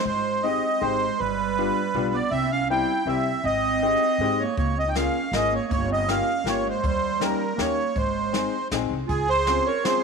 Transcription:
0.05 upright bass G#1, clarinet G#3, accordion C5
0.43 upright piano G#3 C4 D#4 G4, clarinet C4, accordion D#5
0.81 upright bass G#1, upright piano G#3 C4 D#4 G4, clarinet G#3, accordion C5
1.18 upright bass G1, clarinet G3, accordion B4
1.58 upright piano G3 B3 D4 F4
1.94 upright bass B1, upright piano G3 B3 D4 F4
2.14 clarinet B3, accordion D5
2.31 upright bass C2, clarinet C4, accordion E5
2.52 clarinet C#4, accordion F5
2.70 upright piano G3 C4 E4 G4, clarinet E4, accordion G5
3.06 upright bass C2, upright piano G3 C4 E4 G4, clarinet C4, accordion E5
3.44 upright bass G#1, clarinet C4, accordion D#5
3.82 upright piano G#3 C4 D#4 G4
4.18 upright bass G#2, upright piano G#3 C4 D#4 G4
4.40 clarinet A#3, accordion C#5
4.56 upright bass C#2, clarinet A#3, accordion C#5, kick, closed hi-hat
4.77 clarinet C4, accordion D#5
4.87 clarinet D#4, accordion G5
4.95 upright piano A#3 C#4 F4 G#4, clarinet C#4, accordion F5, snare, closed hi-hat
5.31 upright bass G#1, clarinet A#3, accordion D#5, snare
5.35 upright piano A#3 C#4 F4 G#4
5.52 clarinet A#3, accordion C#5
5.68 upright bass G1, clarinet A#3, kick, closed hi-hat
5.72 accordion C#5
5.89 clarinet C4, accordion D#5
6.07 upright piano A#3 C#4 F4 G4, clarinet C#4, snare, closed hi-hat
6.11 accordion F5
6.44 upright bass G1, upright piano A#3 C#4 F4 G4, clarinet A#3, snare, closed hi-hat
6.48 accordion C#5
6.66 clarinet G#3, accordion C5
6.82 upright bass D#2, clarinet G3, kick, closed hi-hat
6.87 accordion C5
7.19 clarinet G3, upright piano A#3 C#4 D#4 G4, snare, closed hi-hat
7.23 accordion A#4
7.55 upright bass D#2, clarinet A#3, upright piano A#3 C#4 D#4 G4, snare, closed hi-hat
7.61 accordion C#5
7.95 upright bass G#1, clarinet G#3, accordion C5, kick, closed hi-hat
8.33 upright piano G#3 C4 D#4 G#4, snare, closed hi-hat
8.71 upright bass A#1, upright piano G#3 C4 D#4 G#4, snare, closed hi-hat
8.91 upright bass C2
9.06 upright bass C#2, clarinet F4, accordion G#4, kick, closed hi-hat
9.28 clarinet G#4, accordion C5
9.46 upright piano C4 C#4 F4 G#4, snare, closed hi-hat
9.66 clarinet A#4, accordion C#5
9.84 upright piano C4 C#4 F4 G#4, clarinet G#4, accordion C5, snare, closed hi-hat

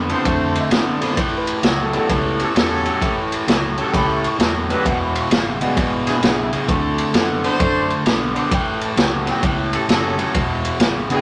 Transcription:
Already playing: fingered electric bass F2
0.08 overdriven electric guitar D3 B3, upright piano F3 A3 C4 E4, horn section D4 C5, ride
0.14 upright piano A5
0.25 fingered electric bass F2, overdriven electric guitar D3 A3, kick, ride
0.55 upright piano D#5, ride
0.61 upright piano E5
0.70 fingered electric bass A2, overdriven electric guitar D3 B3, upright piano F3 A3 C4 E4, snare, ride
0.92 upright piano D5
1.01 overdriven electric guitar D3 B3, horn section D4 F4 C5, snare, ride
1.17 fingered electric bass A1, overdriven electric guitar A2 E3, kick, ride
1.37 upright piano B4
1.47 ride
1.62 fingered electric bass C#2, overdriven electric guitar A2 F#3, snare, ride
1.67 upright piano C#5
1.82 upright piano A4
1.92 overdriven electric guitar A2 F#3, upright piano G3 B3 C#4 E4, ride
1.97 upright piano A4
2.09 fingered electric bass C#2, overdriven electric guitar A2 E3, kick, ride
2.39 horn section C#4 G4 A4, ride
2.55 fingered electric bass E2, overdriven electric guitar A2 F#3, horn section C#4 G4 A4, snare, ride
2.85 overdriven electric guitar A2 F#3, ride
3.01 fingered electric bass A1, overdriven electric guitar A2 E3, kick, ride
3.32 ride
3.47 fingered electric bass C#2, overdriven electric guitar A2 F#3, snare, ride
3.77 overdriven electric guitar A2 F#3, horn section C#4 G4 A4, ride
3.91 fingered electric bass C#2, overdriven electric guitar A2 E3, upright piano G5 A#5, kick, snare, ride
3.96 upright piano B5
4.12 upright piano E5 C#6
4.24 upright piano C#6, ride
4.39 fingered electric bass E2, overdriven electric guitar A2 F#3, snare, ride
4.69 overdriven electric guitar A2 F#3, upright piano G#3 B3 D4 F#4, horn section C#4 G4 B4, ride
4.85 fingered electric bass E1, overdriven electric guitar E2 B2, kick, ride
4.89 upright piano F#5
5.04 upright piano B5
5.15 upright piano C6, ride
5.20 upright piano C#6
5.30 fingered electric bass G#1, overdriven electric guitar E2 C#3, snare, ride
5.61 overdriven electric guitar E2 C#3, upright piano G#3 B3 D4 F#4, ride
5.77 fingered electric bass G#1, overdriven electric guitar E2 B2, kick, ride
6.06 horn section D4 E4 G#4, snare, ride
6.11 upright piano B5
6.22 fingered electric bass B1, overdriven electric guitar E2 C#3, horn section D4 E4 G#4, snare, ride
6.26 upright piano F#5
6.42 upright piano E5
6.53 overdriven electric guitar E2 C#3, ride
6.68 fingered electric bass D2, overdriven electric guitar D3 A3, upright piano A3 C4 E4 F#4, kick, ride
6.98 ride
7.14 fingered electric bass F#2, overdriven electric guitar D3 B3, upright piano A3 C4 E4 A4, snare, ride
7.43 overdriven electric guitar D3 B3, horn section D4 F#4 C5, ride
7.60 fingered electric bass F#2, overdriven electric guitar D3 A3, kick, ride
7.90 ride
8.06 fingered electric bass B1, overdriven electric guitar D3 B3, snare, ride
8.35 overdriven electric guitar D3 B3, horn section D4 F#4 C5, ride
8.39 upright piano D6
8.51 fingered electric bass A1, overdriven electric guitar A2 E3, upright piano G5, kick, ride
8.81 upright piano A5, ride
8.97 fingered electric bass C#2, overdriven electric guitar A2 F#3, upright piano B3 C#4 E4 G4, snare, ride
9.26 overdriven electric guitar A2 F#3, snare, ride
9.30 upright piano G5
9.42 fingered electric bass C#2, overdriven electric guitar A2 E3, kick, ride
9.72 horn section C#4 G4 A4, ride
9.88 fingered electric bass F#1, overdriven electric guitar A2 F#3, horn section C#4 G4 A4, upright piano A5, snare, ride
10.07 upright piano C#5 A5
10.18 overdriven electric guitar A2 F#3, ride
10.34 fingered electric bass E1, overdriven electric guitar E2 B2, kick, ride
10.65 ride
10.80 fingered electric bass G#1, overdriven electric guitar E2 C#3, snare, ride
11.10 overdriven electric guitar E2 C#3, upright piano B3 D4 F#4 G#4 F#5, horn section D4 E4 G#4, ride
11.15 upright piano G5

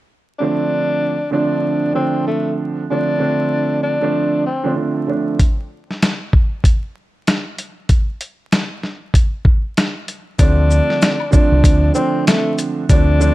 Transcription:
0.39 grand piano D3 F3 A3 C4 D4, tenor saxophone D4
1.31 grand piano D3 F3 A3 C4 D4, tenor saxophone D4
1.93 grand piano D3 F3 A3 C4 D4, tenor saxophone C4
2.27 tenor saxophone A3
2.90 grand piano D3 F3 A3 C4 D4, tenor saxophone D4
3.19 grand piano D3 F3 A3 C4 D4
3.83 tenor saxophone D4
4.01 grand piano D3 F3 A3 C4 D4
4.46 tenor saxophone C4
4.64 grand piano D3 F3 A3 C4 D4
4.75 grand piano D3 F3 A3 C4 D4
5.07 grand piano D3 F3 A3 C4 D4
5.39 kick, closed hi-hat
5.91 snare
6.02 snare, closed hi-hat
6.33 kick
6.64 kick, closed hi-hat
7.27 snare, closed hi-hat
7.58 closed hi-hat
7.89 kick, closed hi-hat
8.21 closed hi-hat
8.52 snare, closed hi-hat
8.83 snare
9.14 kick, closed hi-hat
9.45 kick
9.77 snare, closed hi-hat
10.08 closed hi-hat
10.39 fingered electric bass D2, grand piano D3 F3 A3 C4 D4, tenor saxophone D4, kick, closed hi-hat, maracas
10.71 shaker, maracas
10.90 snare
11.02 snare, closed hi-hat, maracas
11.20 high woodblock
11.31 grand piano D3 F3 A3 C4 D4, tenor saxophone D4, kick, maracas, shaker
11.52 fingered electric bass C2
11.64 fingered electric bass D2, kick, closed hi-hat, maracas
11.94 grand piano D3 F3 A3 C4 D4, tenor saxophone C4, shaker, maracas
12.27 tenor saxophone A3, snare, closed hi-hat, maracas
12.59 closed hi-hat, shaker, maracas
12.89 fingered electric bass D2, grand piano D3 F3 A3 C4 D4, tenor saxophone D4, kick, closed hi-hat, maracas
13.19 grand piano D3 F3 A3 C4 D4, shaker, maracas

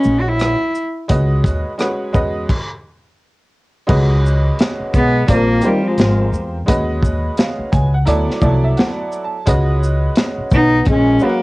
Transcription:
Already playing: upright piano G#3 C#4 F#4 B4 D#5, cello C#4
0.03 upright bass A#1, shaker
0.20 cello F#4
0.28 cello E4
0.39 cross-stick, closed hi-hat
0.75 shaker
1.08 upright bass C#2, upright piano G#3 C#4 F#4 B4 D#5, kick, closed hi-hat
1.44 upright bass D#2, kick, closed hi-hat, shaker
1.78 upright piano G#3 C#4 F#4 B4 C#5, cross-stick, closed hi-hat
2.13 upright bass E2, upright piano G#3 C#4 F#4 B4 D#5, kick, shaker
2.49 kick, crash
3.87 upright bass C#2, upright piano G#3 C#4 F#4 B4 D#5, kick, crash
4.26 shaker
4.59 snare, closed hi-hat
4.80 muted upright bass stroke
4.94 upright bass B1, trombone G#3, cello B3, kick, closed hi-hat, shaker
5.26 upright bass A#1, trombone F3, upright piano G3 C4 F4 A#4 D5, kick, closed hi-hat
5.31 cello A#3
5.62 trombone D#3, upright piano C4 F4 G4 A#4 C5, closed hi-hat, shaker
5.66 cello G3
5.84 trombone F3, cello G#3
5.98 upright bass G#1, snare, closed hi-hat
6.32 upright bass E2, shaker
6.66 upright bass D#2, upright piano G#3 C#4 F#4 B4 D#5, kick, closed hi-hat
7.03 kick, shaker
7.37 upright piano F5, snare, closed hi-hat
7.59 muted upright bass stroke
7.72 upright bass C#2, upright piano G#5, kick, closed hi-hat, shaker
7.94 upright piano F#5
8.05 upright bass D2, upright piano F#3 B3 E4 A4 D5, closed hi-hat
8.28 muted upright bass stroke, snare
8.41 upright bass C2, upright piano F3 B3 E4 A4 D5, kick, shaker
8.48 upright piano F#3
8.64 upright piano E5
8.77 upright piano F#5, snare, closed hi-hat
9.12 shaker
9.24 upright piano A5
9.46 upright bass C#2, upright piano G#3 C#4 F#4 B4 D#5, kick, closed hi-hat
9.83 shaker
10.15 snare, closed hi-hat
10.38 muted upright bass stroke
10.51 upright bass B1, trombone B3, cello D#4, kick, shaker
10.85 upright bass A#1, trombone G#3, kick, closed hi-hat
10.90 cello C#4
11.19 upright piano G#3 C#4 F#4 B4 F5, shaker
11.24 trombone F#3, cello A#3
11.29 upright piano F#5

